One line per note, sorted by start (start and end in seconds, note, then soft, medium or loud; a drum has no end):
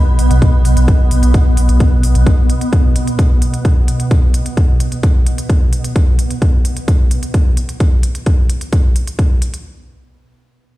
0.00 6.00 B2 medium
0.00 6.00 B3 medium
0.19 0.30 B1 loud
0.19 open hi-hat loud
0.31 0.42 B1 medium
0.31 closed hi-hat medium
0.42 kick loud
0.42 closed hi-hat medium
0.65 0.76 B1 loud
0.65 open hi-hat loud
0.77 0.88 B1 medium
0.77 closed hi-hat medium
0.88 kick loud
0.88 closed hi-hat medium
1.11 1.22 B1 loud
1.11 open hi-hat medium
1.23 1.34 B1 medium
1.23 closed hi-hat medium
1.34 kick loud
1.34 closed hi-hat medium
1.57 1.68 B1 loud
1.57 open hi-hat loud
1.69 1.80 B1 medium
1.69 closed hi-hat medium
1.80 kick loud
1.80 closed hi-hat medium
2.03 2.15 B1 loud
2.03 open hi-hat medium
2.15 2.26 B1 medium
2.15 closed hi-hat medium
2.26 kick loud
2.26 closed hi-hat medium
2.50 closed hi-hat medium
2.61 closed hi-hat medium
2.73 kick loud
2.73 closed hi-hat medium
2.96 closed hi-hat medium
3.07 closed hi-hat medium
3.19 kick loud
3.19 closed hi-hat medium
3.42 closed hi-hat medium
3.54 closed hi-hat medium
3.65 kick loud
3.65 closed hi-hat medium
3.88 closed hi-hat medium
4.00 closed hi-hat medium
4.11 kick loud
4.11 closed hi-hat medium
4.34 closed hi-hat medium
4.46 closed hi-hat medium
4.57 kick loud
4.57 closed hi-hat medium
4.80 closed hi-hat medium
4.92 closed hi-hat medium
5.03 kick loud
5.03 closed hi-hat medium
5.27 closed hi-hat medium
5.38 closed hi-hat medium
5.50 kick loud
5.50 closed hi-hat medium
5.73 closed hi-hat medium
5.84 closed hi-hat medium
5.96 kick loud
5.96 closed hi-hat medium
6.19 closed hi-hat medium
6.31 closed hi-hat medium
6.42 kick loud
6.42 closed hi-hat medium
6.65 closed hi-hat medium
6.77 closed hi-hat medium
6.88 kick loud
6.88 closed hi-hat medium
7.11 closed hi-hat medium
7.23 closed hi-hat medium
7.34 kick loud
7.34 closed hi-hat medium
7.57 closed hi-hat medium
7.69 closed hi-hat medium
7.80 kick loud
7.80 closed hi-hat medium
8.03 closed hi-hat medium
8.15 closed hi-hat medium
8.26 kick loud
8.26 closed hi-hat medium
8.50 closed hi-hat medium
8.61 closed hi-hat medium
8.73 kick loud
8.73 closed hi-hat medium
8.96 closed hi-hat medium
9.07 closed hi-hat medium
9.19 kick loud
9.19 closed hi-hat medium
9.42 closed hi-hat medium
9.54 closed hi-hat medium